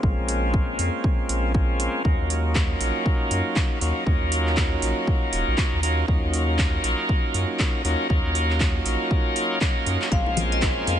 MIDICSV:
0, 0, Header, 1, 5, 480
1, 0, Start_track
1, 0, Tempo, 504202
1, 31, Time_signature, 4, 2, 24, 8
1, 10467, End_track
2, 0, Start_track
2, 0, Title_t, "Vibraphone"
2, 0, Program_c, 0, 11
2, 9631, Note_on_c, 0, 77, 95
2, 9890, Note_off_c, 0, 77, 0
2, 10017, Note_on_c, 0, 75, 90
2, 10269, Note_off_c, 0, 75, 0
2, 10467, End_track
3, 0, Start_track
3, 0, Title_t, "Tonewheel organ"
3, 0, Program_c, 1, 16
3, 22, Note_on_c, 1, 56, 98
3, 27, Note_on_c, 1, 58, 85
3, 31, Note_on_c, 1, 60, 87
3, 36, Note_on_c, 1, 61, 84
3, 40, Note_on_c, 1, 65, 105
3, 1448, Note_off_c, 1, 56, 0
3, 1450, Note_off_c, 1, 58, 0
3, 1452, Note_off_c, 1, 60, 0
3, 1455, Note_off_c, 1, 61, 0
3, 1457, Note_off_c, 1, 65, 0
3, 1467, Note_on_c, 1, 56, 94
3, 1469, Note_on_c, 1, 58, 88
3, 1472, Note_on_c, 1, 60, 92
3, 1474, Note_on_c, 1, 61, 89
3, 1476, Note_on_c, 1, 65, 107
3, 1926, Note_off_c, 1, 56, 0
3, 1928, Note_off_c, 1, 58, 0
3, 1929, Note_off_c, 1, 60, 0
3, 1930, Note_off_c, 1, 61, 0
3, 1931, Note_off_c, 1, 65, 0
3, 1942, Note_on_c, 1, 54, 94
3, 1947, Note_on_c, 1, 58, 91
3, 1952, Note_on_c, 1, 61, 92
3, 1956, Note_on_c, 1, 63, 85
3, 1961, Note_on_c, 1, 65, 103
3, 3604, Note_off_c, 1, 54, 0
3, 3607, Note_off_c, 1, 58, 0
3, 3609, Note_off_c, 1, 61, 0
3, 3611, Note_off_c, 1, 63, 0
3, 3613, Note_off_c, 1, 65, 0
3, 3627, Note_on_c, 1, 54, 89
3, 3629, Note_on_c, 1, 58, 81
3, 3631, Note_on_c, 1, 61, 86
3, 3634, Note_on_c, 1, 63, 81
3, 3636, Note_on_c, 1, 65, 98
3, 3846, Note_off_c, 1, 54, 0
3, 3848, Note_off_c, 1, 58, 0
3, 3849, Note_off_c, 1, 61, 0
3, 3850, Note_off_c, 1, 63, 0
3, 3851, Note_off_c, 1, 65, 0
3, 3862, Note_on_c, 1, 54, 99
3, 3867, Note_on_c, 1, 58, 87
3, 3872, Note_on_c, 1, 61, 87
3, 3876, Note_on_c, 1, 63, 90
3, 3881, Note_on_c, 1, 65, 107
3, 5524, Note_off_c, 1, 54, 0
3, 5526, Note_off_c, 1, 58, 0
3, 5529, Note_off_c, 1, 61, 0
3, 5531, Note_off_c, 1, 63, 0
3, 5533, Note_off_c, 1, 65, 0
3, 5547, Note_on_c, 1, 54, 89
3, 5549, Note_on_c, 1, 58, 85
3, 5552, Note_on_c, 1, 61, 83
3, 5554, Note_on_c, 1, 63, 81
3, 5556, Note_on_c, 1, 65, 98
3, 5766, Note_off_c, 1, 54, 0
3, 5768, Note_off_c, 1, 58, 0
3, 5769, Note_off_c, 1, 61, 0
3, 5770, Note_off_c, 1, 63, 0
3, 5771, Note_off_c, 1, 65, 0
3, 5782, Note_on_c, 1, 54, 99
3, 5787, Note_on_c, 1, 58, 91
3, 5791, Note_on_c, 1, 61, 89
3, 5796, Note_on_c, 1, 63, 90
3, 5801, Note_on_c, 1, 65, 103
3, 7444, Note_off_c, 1, 54, 0
3, 7446, Note_off_c, 1, 58, 0
3, 7449, Note_off_c, 1, 61, 0
3, 7451, Note_off_c, 1, 63, 0
3, 7453, Note_off_c, 1, 65, 0
3, 7467, Note_on_c, 1, 54, 91
3, 7469, Note_on_c, 1, 58, 83
3, 7471, Note_on_c, 1, 61, 82
3, 7474, Note_on_c, 1, 63, 83
3, 7476, Note_on_c, 1, 65, 101
3, 7686, Note_off_c, 1, 54, 0
3, 7688, Note_off_c, 1, 58, 0
3, 7689, Note_off_c, 1, 61, 0
3, 7690, Note_off_c, 1, 63, 0
3, 7691, Note_off_c, 1, 65, 0
3, 7702, Note_on_c, 1, 54, 93
3, 7707, Note_on_c, 1, 58, 86
3, 7711, Note_on_c, 1, 61, 87
3, 7716, Note_on_c, 1, 63, 90
3, 7721, Note_on_c, 1, 65, 105
3, 9128, Note_off_c, 1, 54, 0
3, 9130, Note_off_c, 1, 58, 0
3, 9132, Note_off_c, 1, 61, 0
3, 9135, Note_off_c, 1, 63, 0
3, 9137, Note_off_c, 1, 65, 0
3, 9147, Note_on_c, 1, 54, 98
3, 9149, Note_on_c, 1, 58, 86
3, 9151, Note_on_c, 1, 61, 91
3, 9153, Note_on_c, 1, 63, 88
3, 9156, Note_on_c, 1, 65, 110
3, 9606, Note_off_c, 1, 54, 0
3, 9607, Note_off_c, 1, 58, 0
3, 9609, Note_off_c, 1, 61, 0
3, 9610, Note_off_c, 1, 63, 0
3, 9611, Note_off_c, 1, 65, 0
3, 9622, Note_on_c, 1, 56, 98
3, 9627, Note_on_c, 1, 58, 92
3, 9631, Note_on_c, 1, 60, 91
3, 9636, Note_on_c, 1, 61, 86
3, 9641, Note_on_c, 1, 65, 103
3, 10467, Note_off_c, 1, 56, 0
3, 10467, Note_off_c, 1, 58, 0
3, 10467, Note_off_c, 1, 60, 0
3, 10467, Note_off_c, 1, 61, 0
3, 10467, Note_off_c, 1, 65, 0
3, 10467, End_track
4, 0, Start_track
4, 0, Title_t, "Analog synth bass"
4, 0, Program_c, 2, 38
4, 31, Note_on_c, 2, 34, 91
4, 134, Note_off_c, 2, 34, 0
4, 177, Note_on_c, 2, 34, 86
4, 707, Note_off_c, 2, 34, 0
4, 751, Note_on_c, 2, 41, 90
4, 854, Note_off_c, 2, 41, 0
4, 1231, Note_on_c, 2, 34, 88
4, 1789, Note_off_c, 2, 34, 0
4, 1951, Note_on_c, 2, 39, 98
4, 2054, Note_off_c, 2, 39, 0
4, 2097, Note_on_c, 2, 39, 86
4, 2627, Note_off_c, 2, 39, 0
4, 2671, Note_on_c, 2, 34, 89
4, 2774, Note_off_c, 2, 34, 0
4, 3150, Note_on_c, 2, 42, 81
4, 3254, Note_off_c, 2, 42, 0
4, 3631, Note_on_c, 2, 39, 97
4, 3734, Note_off_c, 2, 39, 0
4, 3871, Note_on_c, 2, 39, 89
4, 3974, Note_off_c, 2, 39, 0
4, 4016, Note_on_c, 2, 39, 85
4, 4547, Note_off_c, 2, 39, 0
4, 4590, Note_on_c, 2, 34, 90
4, 4694, Note_off_c, 2, 34, 0
4, 5071, Note_on_c, 2, 27, 99
4, 5174, Note_off_c, 2, 27, 0
4, 5217, Note_on_c, 2, 34, 96
4, 5284, Note_off_c, 2, 34, 0
4, 5457, Note_on_c, 2, 39, 98
4, 5747, Note_off_c, 2, 39, 0
4, 5791, Note_on_c, 2, 39, 92
4, 5894, Note_off_c, 2, 39, 0
4, 5937, Note_on_c, 2, 39, 90
4, 6467, Note_off_c, 2, 39, 0
4, 6511, Note_on_c, 2, 34, 85
4, 6614, Note_off_c, 2, 34, 0
4, 6991, Note_on_c, 2, 42, 79
4, 7094, Note_off_c, 2, 42, 0
4, 7471, Note_on_c, 2, 39, 91
4, 7574, Note_off_c, 2, 39, 0
4, 7711, Note_on_c, 2, 39, 92
4, 7814, Note_off_c, 2, 39, 0
4, 7856, Note_on_c, 2, 39, 90
4, 8387, Note_off_c, 2, 39, 0
4, 8431, Note_on_c, 2, 34, 89
4, 8534, Note_off_c, 2, 34, 0
4, 9391, Note_on_c, 2, 42, 78
4, 9494, Note_off_c, 2, 42, 0
4, 9631, Note_on_c, 2, 34, 93
4, 9734, Note_off_c, 2, 34, 0
4, 9777, Note_on_c, 2, 34, 86
4, 10307, Note_off_c, 2, 34, 0
4, 10351, Note_on_c, 2, 41, 95
4, 10454, Note_off_c, 2, 41, 0
4, 10467, End_track
5, 0, Start_track
5, 0, Title_t, "Drums"
5, 31, Note_on_c, 9, 36, 118
5, 126, Note_off_c, 9, 36, 0
5, 271, Note_on_c, 9, 46, 101
5, 366, Note_off_c, 9, 46, 0
5, 511, Note_on_c, 9, 36, 113
5, 606, Note_off_c, 9, 36, 0
5, 751, Note_on_c, 9, 46, 105
5, 846, Note_off_c, 9, 46, 0
5, 991, Note_on_c, 9, 36, 121
5, 1086, Note_off_c, 9, 36, 0
5, 1231, Note_on_c, 9, 46, 103
5, 1326, Note_off_c, 9, 46, 0
5, 1471, Note_on_c, 9, 36, 123
5, 1566, Note_off_c, 9, 36, 0
5, 1711, Note_on_c, 9, 46, 106
5, 1806, Note_off_c, 9, 46, 0
5, 1951, Note_on_c, 9, 36, 115
5, 2046, Note_off_c, 9, 36, 0
5, 2191, Note_on_c, 9, 46, 99
5, 2286, Note_off_c, 9, 46, 0
5, 2430, Note_on_c, 9, 39, 103
5, 2431, Note_on_c, 9, 36, 110
5, 2526, Note_off_c, 9, 36, 0
5, 2526, Note_off_c, 9, 39, 0
5, 2671, Note_on_c, 9, 46, 102
5, 2767, Note_off_c, 9, 46, 0
5, 2911, Note_on_c, 9, 36, 116
5, 3006, Note_off_c, 9, 36, 0
5, 3151, Note_on_c, 9, 46, 101
5, 3246, Note_off_c, 9, 46, 0
5, 3390, Note_on_c, 9, 39, 111
5, 3391, Note_on_c, 9, 36, 117
5, 3485, Note_off_c, 9, 39, 0
5, 3486, Note_off_c, 9, 36, 0
5, 3631, Note_on_c, 9, 46, 105
5, 3726, Note_off_c, 9, 46, 0
5, 3871, Note_on_c, 9, 36, 108
5, 3966, Note_off_c, 9, 36, 0
5, 4111, Note_on_c, 9, 46, 97
5, 4206, Note_off_c, 9, 46, 0
5, 4256, Note_on_c, 9, 39, 37
5, 4350, Note_off_c, 9, 39, 0
5, 4350, Note_on_c, 9, 39, 110
5, 4351, Note_on_c, 9, 36, 106
5, 4445, Note_off_c, 9, 39, 0
5, 4446, Note_off_c, 9, 36, 0
5, 4591, Note_on_c, 9, 46, 105
5, 4687, Note_off_c, 9, 46, 0
5, 4831, Note_on_c, 9, 36, 113
5, 4926, Note_off_c, 9, 36, 0
5, 5071, Note_on_c, 9, 46, 99
5, 5166, Note_off_c, 9, 46, 0
5, 5310, Note_on_c, 9, 39, 107
5, 5311, Note_on_c, 9, 36, 116
5, 5405, Note_off_c, 9, 39, 0
5, 5406, Note_off_c, 9, 36, 0
5, 5551, Note_on_c, 9, 46, 96
5, 5646, Note_off_c, 9, 46, 0
5, 5791, Note_on_c, 9, 36, 111
5, 5886, Note_off_c, 9, 36, 0
5, 6031, Note_on_c, 9, 46, 95
5, 6126, Note_off_c, 9, 46, 0
5, 6271, Note_on_c, 9, 36, 105
5, 6271, Note_on_c, 9, 39, 112
5, 6366, Note_off_c, 9, 36, 0
5, 6366, Note_off_c, 9, 39, 0
5, 6511, Note_on_c, 9, 46, 100
5, 6607, Note_off_c, 9, 46, 0
5, 6751, Note_on_c, 9, 36, 112
5, 6846, Note_off_c, 9, 36, 0
5, 6991, Note_on_c, 9, 46, 95
5, 7086, Note_off_c, 9, 46, 0
5, 7230, Note_on_c, 9, 39, 111
5, 7231, Note_on_c, 9, 36, 113
5, 7325, Note_off_c, 9, 39, 0
5, 7326, Note_off_c, 9, 36, 0
5, 7471, Note_on_c, 9, 46, 90
5, 7566, Note_off_c, 9, 46, 0
5, 7711, Note_on_c, 9, 36, 110
5, 7806, Note_off_c, 9, 36, 0
5, 7951, Note_on_c, 9, 46, 99
5, 8046, Note_off_c, 9, 46, 0
5, 8096, Note_on_c, 9, 39, 37
5, 8190, Note_off_c, 9, 39, 0
5, 8190, Note_on_c, 9, 39, 110
5, 8191, Note_on_c, 9, 36, 104
5, 8285, Note_off_c, 9, 39, 0
5, 8286, Note_off_c, 9, 36, 0
5, 8431, Note_on_c, 9, 46, 96
5, 8526, Note_off_c, 9, 46, 0
5, 8671, Note_on_c, 9, 36, 115
5, 8766, Note_off_c, 9, 36, 0
5, 8911, Note_on_c, 9, 46, 96
5, 9006, Note_off_c, 9, 46, 0
5, 9151, Note_on_c, 9, 36, 114
5, 9151, Note_on_c, 9, 39, 113
5, 9246, Note_off_c, 9, 36, 0
5, 9246, Note_off_c, 9, 39, 0
5, 9391, Note_on_c, 9, 46, 93
5, 9487, Note_off_c, 9, 46, 0
5, 9537, Note_on_c, 9, 39, 73
5, 9631, Note_on_c, 9, 36, 115
5, 9632, Note_off_c, 9, 39, 0
5, 9632, Note_on_c, 9, 42, 56
5, 9726, Note_off_c, 9, 36, 0
5, 9727, Note_off_c, 9, 42, 0
5, 9771, Note_on_c, 9, 60, 50
5, 9866, Note_off_c, 9, 60, 0
5, 9871, Note_on_c, 9, 46, 99
5, 9873, Note_on_c, 9, 63, 87
5, 9967, Note_off_c, 9, 46, 0
5, 9968, Note_off_c, 9, 63, 0
5, 10017, Note_on_c, 9, 42, 68
5, 10109, Note_on_c, 9, 60, 84
5, 10111, Note_on_c, 9, 36, 114
5, 10111, Note_on_c, 9, 39, 119
5, 10112, Note_off_c, 9, 42, 0
5, 10112, Note_on_c, 9, 42, 54
5, 10204, Note_off_c, 9, 60, 0
5, 10206, Note_off_c, 9, 36, 0
5, 10206, Note_off_c, 9, 39, 0
5, 10207, Note_off_c, 9, 42, 0
5, 10351, Note_on_c, 9, 46, 109
5, 10351, Note_on_c, 9, 60, 47
5, 10446, Note_off_c, 9, 60, 0
5, 10447, Note_off_c, 9, 46, 0
5, 10467, End_track
0, 0, End_of_file